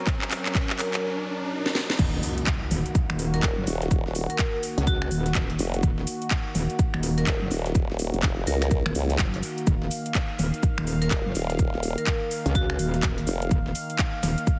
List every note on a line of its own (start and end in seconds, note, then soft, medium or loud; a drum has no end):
0.00 1.95 F#3 medium
0.00 1.95 C#4 medium
0.00 1.95 A#4 medium
0.00 riser medium
0.07 kick loud
0.07 clap medium
0.07 closed hi-hat medium
0.07 cabasa medium
0.22 clap medium
0.22 cabasa soft
0.31 clap medium
0.31 open hi-hat loud
0.31 cabasa medium
0.46 clap medium
0.46 closed hi-hat medium
0.46 cabasa soft
0.55 kick loud
0.55 clap loud
0.55 closed hi-hat medium
0.55 cabasa medium
0.70 clap medium
0.79 0.88 A#4 medium
0.79 clap loud
0.79 open hi-hat loud
0.79 cabasa loud
0.94 1.00 A#4 medium
0.94 clap medium
0.94 closed hi-hat medium
0.94 cabasa soft
1.66 snare medium
1.75 snare medium
1.90 snare medium
1.99 2.22 D#1 loud
1.99 14.59 D#3 medium
1.99 14.59 A#3 medium
1.99 9.66 F#4 medium
1.99 kick loud
1.99 closed hi-hat medium
1.99 crash loud
1.99 impact medium
1.99 shaker medium
2.14 snare soft
2.23 open hi-hat loud
2.23 shaker medium
2.38 closed hi-hat medium
2.47 kick loud
2.47 snare loud
2.47 clap loud
2.47 closed hi-hat medium
2.47 shaker medium
2.71 2.83 D#1 loud
2.71 open hi-hat loud
2.71 shaker medium
2.86 closed hi-hat medium
2.95 kick loud
2.95 closed hi-hat medium
2.95 shaker medium
3.10 3.42 D#1 loud
3.10 finger snap medium
3.19 open hi-hat loud
3.19 shaker medium
3.34 3.48 A#4 medium
3.34 snare soft
3.34 closed hi-hat medium
3.43 3.55 D#1 loud
3.43 kick loud
3.43 snare loud
3.43 clap loud
3.43 closed hi-hat medium
3.43 shaker medium
3.58 3.66 F#1 loud
3.67 4.03 D#1 loud
3.67 open hi-hat loud
3.67 shaker medium
3.82 snare medium
3.82 closed hi-hat medium
3.91 kick loud
3.91 closed hi-hat medium
3.91 shaker medium
4.06 4.27 D#1 loud
4.06 snare soft
4.15 open hi-hat loud
4.15 shaker medium
4.30 4.36 A#4 medium
4.30 closed hi-hat medium
4.39 4.48 A#4 medium
4.39 kick loud
4.39 snare loud
4.39 clap loud
4.39 closed hi-hat medium
4.39 shaker medium
4.63 open hi-hat loud
4.63 shaker medium
4.78 5.10 C#2 medium
4.78 closed hi-hat medium
4.78 closed hi-hat soft
4.87 5.35 F#4 medium
4.87 kick loud
4.87 closed hi-hat medium
4.87 shaker medium
5.02 finger snap medium
5.11 5.58 D#1 loud
5.11 open hi-hat loud
5.11 shaker medium
5.26 snare soft
5.26 closed hi-hat medium
5.35 kick loud
5.35 snare loud
5.35 clap loud
5.35 closed hi-hat medium
5.35 shaker medium
5.50 closed hi-hat soft
5.59 5.82 F1 loud
5.59 open hi-hat loud
5.59 shaker medium
5.74 closed hi-hat medium
5.83 6.06 D#1 loud
5.83 kick loud
5.83 closed hi-hat medium
5.83 shaker medium
5.98 snare soft
6.07 open hi-hat loud
6.07 shaker medium
6.22 closed hi-hat medium
6.31 kick loud
6.31 snare loud
6.31 clap loud
6.31 closed hi-hat medium
6.31 shaker medium
6.55 6.67 D#1 loud
6.55 open hi-hat loud
6.55 shaker medium
6.70 closed hi-hat medium
6.79 kick loud
6.79 closed hi-hat medium
6.79 shaker medium
6.94 7.26 D#1 loud
6.94 finger snap medium
7.03 open hi-hat loud
7.03 shaker medium
7.18 7.32 A#4 medium
7.18 snare soft
7.18 closed hi-hat medium
7.27 7.39 D#1 medium
7.27 kick loud
7.27 snare loud
7.27 clap loud
7.27 closed hi-hat medium
7.27 shaker medium
7.42 7.50 F#1 loud
7.51 7.87 D#1 loud
7.51 open hi-hat loud
7.51 shaker medium
7.66 snare medium
7.66 closed hi-hat medium
7.75 kick loud
7.75 closed hi-hat soft
7.75 shaker medium
7.90 8.11 D#1 loud
7.90 snare soft
7.99 open hi-hat loud
7.99 shaker medium
8.14 8.46 F1 loud
8.14 closed hi-hat medium
8.23 kick loud
8.23 snare loud
8.23 clap loud
8.23 closed hi-hat medium
8.23 shaker medium
8.47 8.83 C#2 loud
8.47 8.56 A#4 medium
8.47 open hi-hat loud
8.47 shaker medium
8.62 8.68 A#4 medium
8.62 finger snap medium
8.62 closed hi-hat soft
8.62 closed hi-hat medium
8.71 kick loud
8.71 closed hi-hat medium
8.71 shaker medium
8.86 8.94 D#1 medium
8.86 finger snap medium
8.95 9.18 C#2 loud
8.95 open hi-hat loud
8.95 shaker medium
9.10 snare soft
9.10 closed hi-hat medium
9.19 9.42 F#1 medium
9.19 kick loud
9.19 snare loud
9.19 clap loud
9.19 closed hi-hat soft
9.19 shaker medium
9.34 closed hi-hat soft
9.43 open hi-hat loud
9.43 shaker medium
9.58 closed hi-hat medium
9.67 9.90 D#1 loud
9.67 14.59 F5 medium
9.67 kick loud
9.67 closed hi-hat medium
9.67 shaker medium
9.82 snare soft
9.91 open hi-hat loud
9.91 shaker medium
10.06 closed hi-hat medium
10.15 kick loud
10.15 snare loud
10.15 clap loud
10.15 closed hi-hat medium
10.15 shaker loud
10.39 10.51 D#1 loud
10.39 open hi-hat loud
10.39 shaker medium
10.54 closed hi-hat medium
10.63 kick loud
10.63 closed hi-hat medium
10.63 shaker medium
10.78 11.10 D#1 loud
10.78 finger snap medium
10.87 open hi-hat loud
10.87 shaker medium
11.02 11.16 A#4 medium
11.02 snare soft
11.02 closed hi-hat medium
11.11 11.23 D#1 loud
11.11 kick loud
11.11 snare loud
11.11 clap loud
11.11 closed hi-hat medium
11.11 shaker medium
11.26 11.34 F#1 medium
11.35 11.71 D#1 medium
11.35 open hi-hat loud
11.35 shaker medium
11.50 snare medium
11.50 closed hi-hat medium
11.59 kick loud
11.59 closed hi-hat medium
11.59 shaker medium
11.74 11.95 D#1 loud
11.74 snare soft
11.83 open hi-hat loud
11.83 shaker medium
11.98 12.04 A#4 medium
11.98 closed hi-hat medium
12.07 12.16 A#4 medium
12.07 kick loud
12.07 snare loud
12.07 clap loud
12.07 closed hi-hat medium
12.07 shaker medium
12.31 open hi-hat loud
12.31 shaker medium
12.46 12.78 C#2 medium
12.46 closed hi-hat medium
12.46 closed hi-hat soft
12.55 13.03 F#4 medium
12.55 kick loud
12.55 closed hi-hat medium
12.55 shaker medium
12.70 finger snap medium
12.79 13.26 D#1 loud
12.79 open hi-hat loud
12.79 shaker medium
12.94 snare soft
12.94 closed hi-hat medium
13.03 kick loud
13.03 snare loud
13.03 clap loud
13.03 closed hi-hat medium
13.03 shaker loud
13.18 closed hi-hat soft
13.27 13.50 F1 loud
13.27 open hi-hat loud
13.27 shaker medium
13.42 closed hi-hat medium
13.51 13.74 D#1 loud
13.51 kick loud
13.51 closed hi-hat medium
13.51 shaker medium
13.66 snare soft
13.75 open hi-hat loud
13.75 shaker medium
13.90 closed hi-hat medium
13.99 kick loud
13.99 snare loud
13.99 clap loud
13.99 closed hi-hat medium
13.99 shaker medium
14.23 14.35 D#1 loud
14.23 snare loud
14.23 open hi-hat loud
14.23 shaker medium
14.38 closed hi-hat medium
14.47 kick loud
14.47 closed hi-hat medium
14.47 shaker medium